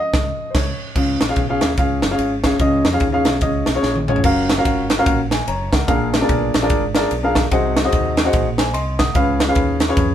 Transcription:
Already playing: F3 G#3 C#4
0.00 D#5
0.13 C#2, kick, snare
0.50 C5
0.55 C#2 C#5, kick, snare, crash
0.95 C#2 C#3 C#4 F4 G#4 F5, kick, crash
1.21 A#1, snare, ride
1.28 C#4 F4 G#4 F5
1.36 B1, kick, ride
1.49 C#4 F4 G#4 F5
1.61 D#2, snare, ride
1.77 C#2 C#4 F4 G#4 F5, kick, ride
2.02 F#1, snare, ride
2.10 C#4 F4 G#4 F5
2.18 G#1, ride
2.43 C#4 F4 G#4 F5, kick, snare, ride
2.59 C#2 C#3 C#4 F4 G#4 D#5, kick, ride
2.85 F2, snare, ride
2.92 C#4 F4 G#4 F5
3.00 D#2, kick, ride
3.12 C#4 F4 G#4 F5
3.25 B1, snare, ride
3.41 C#2 C#4 F4 G#4 D#5, kick, ride
3.66 B1, snare, ride
3.75 C#4 F4 G#4 C#5
3.83 A#1, snare
3.96 high tom
4.08 C#4 F4 G#4 C#5, mid tom
4.16 floor tom
4.24 F#1 C#4 F4 F#4 A#4 F5, kick, crash
4.49 snare, ride
4.57 C#4 F4 F#4 A#4 F5
4.65 G#1, kick, ride
4.90 snare, ride
4.98 C#4 F4 F#4 A#4 F5
5.06 A#1, kick, ride
5.31 G#5, snare, ride
5.47 F#1 C#5 A#5, ride
5.73 C#2 A#4 F#5, kick, snare, ride
5.87 A#1 A#2 D4 F4 G#4 A#4 F5, kick, ride
6.14 snare, ride
6.21 D4 F4 G#4 A#4 D5
6.29 B1, kick, ride
6.54 A#1, snare, ride
6.62 D4 F4 G#4 A#4 D5
6.70 G#1, kick, ride
6.95 D4 F4 G#4 A#4 D5, snare, ride
7.11 B1, ride
7.23 D4 F4 G#4 A#4 F5
7.35 kick, snare, ride
7.51 C2 C3 D#4 F#4 G#4 C5 F#5, kick, ride
7.76 snare, ride
7.85 D#4 F#4 G#4 C5 D#5
7.92 D#2, kick, ride
8.17 snare, ride
8.25 D#4 F#4 G#4 C5 F#5
8.33 A#1, kick, ride
8.58 C5 G#5, snare, ride
8.74 C2 D#5 C6, ride
8.99 F#5 D#6, kick, snare, ride
9.14 C#2 C#3 C#4 F4 G#4 B4 F5, kick, ride
9.40 snare, ride
9.48 C#4 F4 G#4 B4 F5
9.55 D#2, kick, ride
9.80 snare, ride
9.88 C#4 F4 G#4 B4 C#5
9.97 F2, kick, ride

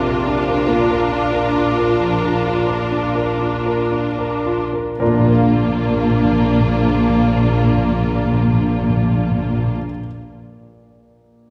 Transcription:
Already playing: A#1 A#2 C3 C4 D4 F4 A#4 C5
0.06 A#4
0.27 D4
0.48 A#4
0.67 A#2 A#3 F4 A#4
0.91 A#4
1.12 D4
1.33 A#4
1.55 F4
1.78 A#4
2.00 F3
2.22 A#4
2.46 F4
2.67 A#4
2.92 D4
3.15 A#4
3.40 F4
3.66 A#4
3.92 D4
4.19 A#4
4.46 F4
4.73 A#4
4.99 A#1 A#2 A#3 D4 F4 A#4
5.07 A#2 A#3
5.13 A#2 D4
5.20 A#2 F4
5.28 A#4
5.34 A#2 F5
5.41 A#2
5.55 A#2
5.62 A#2
5.69 A#2
5.76 A#2
5.83 A#2
5.96 A#2
6.03 A#2
6.10 A#2
6.24 A#2
6.32 A#2
6.53 A#2
6.60 A#2
6.67 A#2
6.74 A#2
6.81 A#2
6.87 A#2
6.94 A#2
7.02 A#2
7.09 A#2
7.16 A#2
7.23 A#2
7.30 A#2
7.37 A#2
7.44 A#2
7.50 A#2
7.58 A#2
7.64 A#2
7.71 A#2
7.77 A#2
7.91 A#2
7.98 A#2
8.05 A#2
8.11 A#2
8.18 A#2
8.25 A#2
8.32 A#2
8.39 A#2
8.46 A#2
8.53 A#2
8.60 A#2
8.68 A#2
8.75 A#2
8.82 A#2
8.90 A#2
8.96 A#2
9.03 A#2
9.09 A#2
9.17 A#2
9.24 A#2
9.31 A#2
9.38 A#2
9.45 A#2
9.52 A#2
9.58 A#2
9.65 A#2

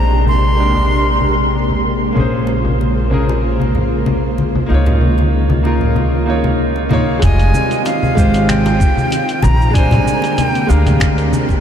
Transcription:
Already playing: A#1 C3 G#3 A#3 D4 G4 C5 A#5
0.26 C6, low conga
0.57 G#3 D4 G4 A#4
0.75 low conga
1.21 low conga
1.70 low conga
2.12 C#3 A#3 C#4
2.17 A#1 F4 G#4 C5, low conga
2.47 high bongo
2.65 low conga
2.81 high bongo
3.10 A#3 C#4 G#4 A#4, low conga
3.29 high bongo
3.60 high bongo, low conga
3.75 low conga
4.06 high bongo, low conga
4.38 high bongo, high conga
4.55 low conga
4.66 C#2 D#3 G#3 A#3 C#4 D#4 F4
4.72 F4 C#5
4.86 high bongo, low conga
5.01 low conga
5.18 high bongo, high conga
5.50 high conga, low conga
5.63 A#3 D#4 F4 A#4, high bongo
5.81 low conga
5.96 high bongo, low conga
6.26 A#3 D#4 F4
6.30 C#5
6.44 high bongo, low conga
6.76 high bongo
6.89 A#3 D#4 F4, high conga, low conga
6.93 C#5
7.19 F1 G#3 F4, kick, closed hi-hat, cabasa
7.24 D#3 G3 C4 F4 D#5 G#5
7.39 closed hi-hat, cabasa
7.54 high bongo, low conga, cabasa
7.71 closed hi-hat, cabasa
7.85 F5, closed hi-hat, high bongo, cabasa
8.03 low conga, cabasa
8.15 G#1 G#3 F4 G4 C5, kick, cabasa
8.34 closed hi-hat, high bongo, cabasa
8.49 G5, finger snap, closed hi-hat, low conga, cabasa
8.66 closed hi-hat, high bongo, cabasa
8.80 kick, cabasa
8.97 low conga, cabasa
9.11 closed hi-hat, high bongo, cabasa
9.29 closed hi-hat, cabasa
9.42 A#1 A#5, high bongo, high conga, low conga, cabasa
9.61 cabasa
9.71 G#3 D4 G#5, kick
9.75 D3 G3 A#3 C4 C5, closed hi-hat, cabasa
9.91 closed hi-hat, high bongo, low conga, cabasa
10.07 cabasa
10.22 closed hi-hat, high bongo, cabasa
10.37 G5, closed hi-hat, low conga, cabasa
10.55 closed hi-hat, cabasa
10.67 D2 G#3 D4 G4 A#4 F5, high bongo, cabasa
10.86 closed hi-hat, low conga, cabasa
11.00 finger snap, kick, closed hi-hat, high bongo, cabasa
11.18 closed hi-hat, cabasa
11.32 low conga, cabasa
11.49 kick, high bongo, cabasa

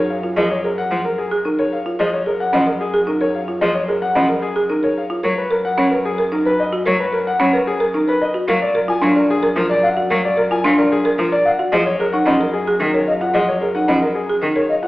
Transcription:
Already playing: F#2 A#4 C#5
0.10 F5
0.23 F4
0.37 F3 G#4 D#5
0.51 C#5
0.64 G#4 A#4
0.78 F#5
0.91 F3
1.05 A#4
1.18 G#4
1.31 G#4
1.45 D#4 A#4
1.59 A#4 C#5
1.73 F5
1.86 F4
1.99 F#2 F3 G#4 D#5
2.13 C#5
2.26 G#4 A#4
2.40 F#5
2.53 F3 C#4 D#5
2.67 A#4
2.81 G#4
2.94 G#4
3.07 D#4 A#4
3.21 A#4 C#5
3.35 F5
3.48 F4
3.61 F3 G#4 D#5
3.74 C#5
3.88 G#4 A#4
4.02 F#5
4.15 F3 C#4 D#5
4.29 A#4
4.42 G#4
4.56 G#4
4.70 D#4 A#4
4.83 A#4 C#5
4.98 F5
5.10 F4
5.23 F#2 F#3 A#4 C#5
5.38 B4
5.51 A#4
5.65 F#5
5.78 F#3 C#4 C#5
5.91 A#4 B4
6.05 G#4
6.18 A#4
6.32 D#4 A#4
6.46 B4
6.60 D#5
6.73 F#4
6.86 F#3 A#4 C#5
7.00 B4
7.13 A#4
7.27 F#5
7.40 F#3 C#4 C#5
7.53 A#4 B4
7.67 G#4
7.80 A#4
7.94 D#4 A#4
8.08 B4
8.22 D#5
8.34 F#4
8.48 F#2 F#3 A#4 F5
8.62 D5
8.75 A#4
8.88 F4 G#5
9.02 F#3 D4 F5
9.16 A#4 D5
9.30 G#4
9.43 A#4
9.56 F3 F4 A#4
9.70 D5
9.83 F5 F#5
9.97 F#4
10.10 F#3 A#4 F5
10.25 D5
10.37 A#4
10.51 F4 G#5
10.64 F#3 D4 F5
10.78 A#4 D5
10.92 G#4
11.05 A#4
11.18 F3 F4 A#4
11.32 D5
11.45 F5 F#5
11.59 F#4
11.72 F#2 F3 G#4 D#5
11.86 C#5
12.00 G#4 A#4
12.13 D#4 F#5
12.26 F3 C#4 D#5
12.40 A#4
12.53 G#4
12.68 G#4
12.80 D#3 D#4 A#4
12.94 A#4 C#5
13.07 D#5 F5
13.21 F4 F#5
13.34 F3 G#4 D#5
13.48 C#5
13.61 G#4 A#4
13.75 D#4 F#5
13.88 F3 C#4 D#5
14.01 A#4
14.15 G#4
14.30 G#4
14.42 D#3 D#4 A#4
14.56 A#4 C#5
14.69 D#5 F5
14.83 F4 F#5

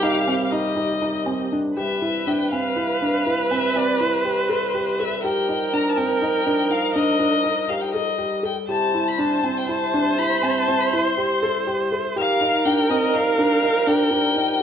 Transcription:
Already playing: D#2 C3 G3 G4
0.03 D#4 F5
0.27 C4
0.45 F5
0.51 D#4 D#5
0.76 D#4
1.02 D#4
1.26 C4
1.52 D4
1.76 C3 E3 G3 G4 B4 E5
2.02 E4
2.27 D4 G5
2.51 C4 F5
2.76 E4
3.02 D4
3.26 E4
3.51 C4 E5
3.75 C4 D5
3.99 E4 C5
4.25 G4
4.49 A4
4.74 G4
5.00 A4 E5
5.23 F3 D#4 G4 A#4 G5
5.49 D#4
5.73 D4 A#5
5.89 A5
5.97 C4 G5
6.22 D#4
6.46 D4
6.70 D#4 F5
6.94 D4 D#5
7.19 D4
7.44 D#4
7.69 G4 F5
7.81 G5
7.94 A4 D#5
8.18 G4
8.43 A4 G5
8.68 C3 E4 G4 C5 A5
8.94 E4
9.08 B5
9.18 D4 A5
9.44 C4
9.57 G5
9.69 E4 A5
9.94 D4
10.18 E4 B5
10.43 C4 A5
10.50 B5
10.58 A5
10.68 C4
10.81 B5
10.93 E4 C6
11.18 G4
11.43 A4
11.67 G4
11.92 A4
12.16 F3 G3 D#4 G4 A#4 F5
12.41 D#4
12.65 D4 G5
12.90 C4 D#5
13.14 D#4 F5
13.39 D4
13.62 D#4
13.87 D4 G5
14.11 D4
14.35 D#4

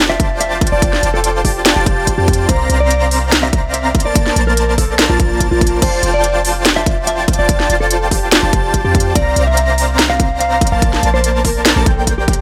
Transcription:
Already playing: F1 F4 C5 D5 G5 A5
0.10 E5
0.20 kick, closed hi-hat
0.40 E5, closed hi-hat
0.61 kick, closed hi-hat
0.67 closed hi-hat
0.72 F1 F4 C5 D5 G5 A5
0.82 kick, closed hi-hat
0.93 snare
1.03 F1 F4 C5 D5 G5 A5, closed hi-hat
1.14 A4
1.24 closed hi-hat
1.45 G4, kick, open hi-hat
1.66 snare, closed hi-hat
1.76 F1 F4 G4 C5 D5 G5 A5
1.86 F1 F4 C5 D5 G5 A5, kick, closed hi-hat
2.07 kick, closed hi-hat
2.18 F2 F4 G4 C5 D5 G5 A5
2.28 kick, closed hi-hat
2.33 closed hi-hat
2.49 C2 C4 C5 D5 F5 A#5, kick, closed hi-hat
2.70 C2 C4 C5 D5 F5 A#5, closed hi-hat
2.80 D5
2.91 closed hi-hat
3.11 open hi-hat
3.32 snare, closed hi-hat
3.43 E5
3.53 kick, closed hi-hat
3.74 E5, closed hi-hat
3.95 kick, closed hi-hat
4.00 closed hi-hat
4.05 A#1 A#3 A#4 C5 D5 A5
4.16 kick, closed hi-hat
4.26 snare
4.36 A#1 A#3 A#4 C5 D5 A5, closed hi-hat
4.47 A#4
4.57 closed hi-hat
4.78 A4, kick, open hi-hat
4.99 snare, closed hi-hat
5.10 A#1 A#3 F4 A#4 C5 D5 A5
5.20 A#1 A#3 A#4 C5 D5 A5, kick, closed hi-hat
5.40 kick, closed hi-hat
5.51 A#1 A#3 F4 A#4 C5 D5 A5
5.61 kick, closed hi-hat
5.67 closed hi-hat
5.82 F1 F4 C5 D5 G5 A5, kick, closed hi-hat, crash
6.03 F1 F4 C5 D5 G5 A5, closed hi-hat
6.14 D5
6.24 closed hi-hat
6.45 open hi-hat
6.65 snare, closed hi-hat
6.76 E5
6.86 kick, closed hi-hat
7.07 E5, closed hi-hat
7.28 kick, closed hi-hat
7.33 closed hi-hat
7.39 F1 F4 C5 D5 G5 A5
7.49 kick, closed hi-hat
7.60 snare
7.70 F1 F4 C5 D5 G5 A5, closed hi-hat
7.80 A4
7.91 closed hi-hat
8.11 G4, kick, open hi-hat
8.32 snare, closed hi-hat
8.43 F1 F4 G4 C5 D5 G5 A5
8.53 F1 F4 C5 D5 G5 A5, kick, closed hi-hat
8.74 kick, closed hi-hat
8.85 F2 F4 G4 C5 D5 G5 A5
8.95 kick, closed hi-hat
9.00 closed hi-hat
9.15 C2 C4 C5 D5 F5 A#5, kick, closed hi-hat
9.36 C2 C4 C5 D5 F5 A#5, closed hi-hat
9.47 E5
9.57 closed hi-hat
9.78 open hi-hat
9.99 snare, closed hi-hat
10.10 F5
10.20 kick, closed hi-hat
10.40 F5, closed hi-hat
10.61 kick, closed hi-hat
10.67 closed hi-hat
10.72 A#1 A#3 A#4 C5 D5 F5 A5
10.82 kick, closed hi-hat
10.93 snare
11.03 A#1 A#3 A#4 C5 D5 A5, closed hi-hat
11.14 C5
11.24 closed hi-hat
11.45 A#4, kick, open hi-hat
11.65 snare, closed hi-hat
11.76 A#1 A#3 A4 A#4 C5 D5 A5
11.86 A#1 A#3 A#4 C5 D5 G5, kick, closed hi-hat
12.07 kick, closed hi-hat
12.18 G4
12.28 kick, closed hi-hat
12.33 closed hi-hat

